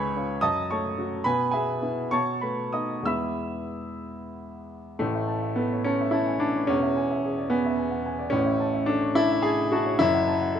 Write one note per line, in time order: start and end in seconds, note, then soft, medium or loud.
0.00 0.39 C#2 medium
0.00 0.32 G#3 soft
0.00 0.39 B4 medium
0.00 0.45 C#5 medium
0.00 0.45 G#5 medium
0.00 0.42 B5 medium
0.00 0.45 C#6 loud
0.16 0.40 C#4 soft
0.16 0.40 F4 soft
0.41 1.23 F#2 medium
0.41 0.68 D#5 medium
0.41 0.67 A5 medium
0.41 0.69 D#6 loud
0.70 1.15 A3 soft
0.70 1.22 C#5 medium
0.70 1.22 A5 medium
0.70 1.25 C#6 medium
0.98 1.23 C#4 soft
0.98 1.23 F#4 soft
1.24 2.10 B2 medium
1.24 1.51 B4 medium
1.24 1.50 G#5 medium
1.24 1.53 B5 loud
1.51 1.80 B3 soft
1.51 2.09 G#4 medium
1.51 2.08 E5 medium
1.51 2.12 G#5 medium
1.81 2.09 B3 soft
1.81 2.10 E4 soft
2.11 3.04 B2 medium
2.11 2.41 C#5 medium
2.11 2.41 A5 medium
2.11 2.42 C#6 medium
2.41 2.94 A3 soft
2.41 2.72 B4 soft
2.41 2.74 B5 medium
2.73 3.04 B3 soft
2.73 3.04 D#4 soft
2.73 3.04 D#5 medium
2.73 3.06 D#6 medium
3.02 4.94 E2 medium
3.02 4.95 G#3 soft
3.02 4.96 B3 soft
3.02 4.07 E6 medium
3.06 4.96 E4 soft
3.06 4.03 E5 medium
3.06 4.03 B5 medium
4.99 6.67 A1 medium
4.99 6.67 A2 medium
4.99 5.57 A3 medium
5.15 5.38 E5 soft
5.28 5.52 A5 soft
5.43 5.66 E5 soft
5.56 5.85 B3 medium
5.56 5.81 A4 soft
5.73 5.95 C#5 soft
5.85 6.14 C#4 medium
5.85 6.09 A5 medium
6.01 6.23 E5 soft
6.11 6.41 E4 medium
6.11 6.37 A5 medium
6.27 6.42 G#5 soft
6.40 6.69 D4 medium
6.40 6.65 A5 soft
6.56 6.70 C#5 soft
6.67 8.32 E1 medium
6.67 8.32 E2 medium
6.67 7.52 C#4 loud
6.83 7.06 E5 soft
6.97 7.20 G#5 soft
7.11 7.34 E5 soft
7.25 7.48 G#4 soft
7.38 7.61 D5 soft
7.50 8.35 B3 medium
7.50 7.74 G#5 medium
7.65 7.89 E5 medium
7.78 8.02 G#5 medium
7.91 8.07 F#5 soft
8.06 8.30 G#5 soft
8.19 8.35 D5 soft
8.30 9.94 A1 medium
8.30 9.94 A2 medium
8.30 8.89 C#4 medium
8.46 8.70 E5 soft
8.60 8.85 A5 soft
8.74 8.98 E5 soft
8.86 9.17 D4 medium
8.86 9.12 A4 medium
9.02 9.26 C#5 soft
9.15 9.45 E4 loud
9.15 9.40 A5 medium
9.31 9.54 E5 medium
9.42 9.72 G#4 loud
9.42 9.67 A5 medium
9.60 9.73 G#5 soft
9.72 10.00 F#4 medium
9.72 9.95 A5 medium
9.86 10.00 C#5 medium
9.99 10.60 F#1 medium
9.99 10.60 F#2 medium
9.99 10.60 E4 loud
10.14 10.35 F#5 soft
10.27 10.48 A5 medium
10.41 10.60 F#5 soft
10.55 10.60 A4 medium